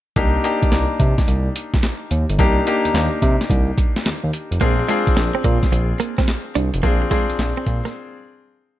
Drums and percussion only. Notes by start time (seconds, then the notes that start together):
0.16 kick, closed hi-hat
0.44 closed hi-hat
0.63 kick, closed hi-hat
0.72 snare, clap, closed hi-hat
1.00 kick, closed hi-hat
1.18 kick, snare, closed hi-hat
1.28 closed hi-hat
1.56 closed hi-hat
1.74 kick, snare, closed hi-hat
1.83 snare, clap, closed hi-hat
2.11 closed hi-hat
2.29 closed hi-hat
2.39 kick, closed hi-hat
2.67 closed hi-hat
2.85 closed hi-hat
2.95 snare, clap, closed hi-hat
3.22 kick, closed hi-hat
3.41 snare, closed hi-hat
3.50 kick, closed hi-hat
3.78 kick, closed hi-hat
3.96 snare, closed hi-hat
4.06 snare, clap, closed hi-hat
4.33 closed hi-hat
4.52 closed hi-hat
4.61 kick, closed hi-hat
4.89 closed hi-hat
5.07 kick, closed hi-hat
5.17 snare, clap, closed hi-hat
5.44 kick, closed hi-hat
5.63 kick, snare, closed hi-hat
5.73 closed hi-hat
6.00 closed hi-hat
6.18 kick, snare, closed hi-hat
6.28 snare, clap, closed hi-hat
6.55 closed hi-hat
6.74 closed hi-hat
6.83 kick, closed hi-hat
7.11 kick, closed hi-hat
7.30 closed hi-hat
7.39 snare, clap, closed hi-hat
7.66 kick, closed hi-hat
7.85 snare, closed hi-hat